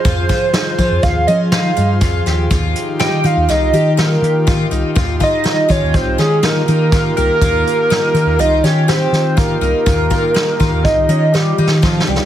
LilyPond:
<<
  \new Staff \with { instrumentName = "Analog synth lead" } { \time 5/4 \key ees \mixolydian \tempo 4 = 122 c''2 f''8 ees''8 f''4 r4 | r4 g''8 f''8 ees''4 bes'4. r8 | r8 ees''4 des''8 c''8 aes'8 bes'4. bes'8~ | bes'2 ees''8 des''8 c''4 bes'8 bes'8~ |
bes'2 ees''4 g'4 f8 g8 | }
  \new Staff \with { instrumentName = "Analog synth pad" } { \time 5/4 \key ees \mixolydian <f f' aes' c''>1~ <f f' aes' c''>4 | <ees ees' f' g'>1~ <ees ees' f' g'>4~ | <ees ees' f' g'>1~ <ees ees' f' g'>4 | <ees ees' f' g'>1~ <ees ees' f' g'>4~ |
<ees ees' f' g'>1~ <ees ees' f' g'>4 | }
  \new Staff \with { instrumentName = "Twelve-string acoustic guitar" } { \time 5/4 \key ees \mixolydian f'8 f'8 ees'8 f'4 des'8 ees'8 ees'8 f'8 g'8 | f'4 ees'8 ees'8 f'8 g'8 g'4 f'8 ees'8 | f'8 f'8 ees'8 f'4 des'8 ees'8 ees'8 f'8 g'8 | f'4 ees'8 ees'8 f'8 g'8 g'4 f'8 ees'8 |
f'8 f'8 ees'8 f'4 des'8 ees'8 ees'8 f'8 g'8 | }
  \new Staff \with { instrumentName = "Trombone" } { \time 5/4 \key ees \mixolydian r2. f'4 r4 | r4 g'8 f'8 ees'4 bes4. r8 | r8 ees'4 des'8 c'8 aes8 bes4. bes8~ | bes2 ees'8 des'8 c'4 bes8 bes8~ |
bes2 ees'4 g4 f,8 g,8 | }
  \new Staff \with { instrumentName = "Fingered electric bass" } { \clef bass \time 5/4 \key ees \mixolydian f,8 r4 f16 f,16 ees,8 f4 g,8 f,8 ees,8 | ees,8 r4 ees16 ees,16 c,8 ees4 ees4 c,16 r16 | ees,8 r4 ees16 ees,16 c,8 ees4 ees4 c,16 r16 | ees,8 r4 ees16 ees,16 c,8 ees4 ees4 c,16 r16 |
ees,8 r4 ees16 ees,16 r8 ees4 ees4 c,16 r16 | }
  \new DrumStaff \with { instrumentName = "Drums" } \drummode { \time 5/4 <hh bd>8 <hh bd>8 <hh sn>8 <hh bd>8 <hh bd>8 hh8 <hh sn>8 hh8 <hh bd>8 <hh sn>8 | <hh bd>8 hh8 <hh sn>8 hh8 <hh sn>8 hh8 <hh sn>8 hh8 <hh bd>8 hh8 | <hh bd>8 <hh bd>8 <hh sn>8 <hh bd>8 <hh bd>8 <hh sn>8 <hh sn>8 hh8 <hh bd sn>8 hh8 | <hh bd>8 hh8 <hh sn>8 hh8 hh8 <hh sn>8 <hh sn>8 <hh sn>8 <hh bd>8 hh8 |
<hh bd>8 <hh bd>8 <hh sn>8 <hh bd>8 <hh bd>8 hh8 \tuplet 3/2 { sn8 r8 sn8 <bd sn>8 sn8 sn8 } | }
>>